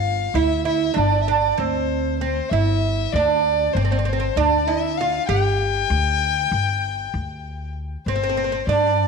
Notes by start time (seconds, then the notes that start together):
Already playing: G1 F4 F5
0.34 D2 E4 E5
0.65 E4 E5
0.94 G1 D4
0.98 D5
1.22 E5
1.28 D4 D5
1.58 D2 C4 C5
2.20 C4 C5
2.49 G1 E4 E5
3.12 D2 D4 D5
3.73 G1 C4 C5
3.81 C4 D5
3.91 C4 C5
3.98 C4 D5
4.05 C4 C5
4.13 C4
4.20 C4
4.36 D2 D4 D5
4.68 E4 E5
4.98 F4 F5
5.28 G1 G4 G5
5.90 D2
6.52 G1
7.14 D2
8.06 G1 C4 C5
8.15 C4
8.23 C4
8.29 C4
8.37 C4
8.44 C4
8.52 C4
8.67 G2 D4 D5